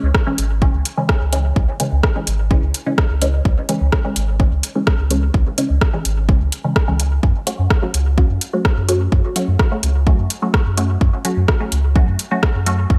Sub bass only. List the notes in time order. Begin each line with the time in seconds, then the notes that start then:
0.03 C#2
0.38 G#1
0.74 C#2
1.21 C#2
1.56 C#2
1.92 C#2
2.27 G#1
2.63 C#2
3.10 C#2
3.45 C#2
3.81 C#2
4.16 G#1
4.52 C#2
4.99 C#2
5.34 C#2
5.70 C#2
6.05 G#1
6.41 C#2
6.88 C#2
7.23 F#2
7.59 F#2
7.94 C#2
8.30 F#2
8.77 F#2
9.12 F#2
9.48 F#2
9.83 C#2
10.19 F#2
10.66 F#2
11.01 F#2
11.37 F#2
11.72 C#2
12.08 F#2
12.55 F#2
12.90 F#2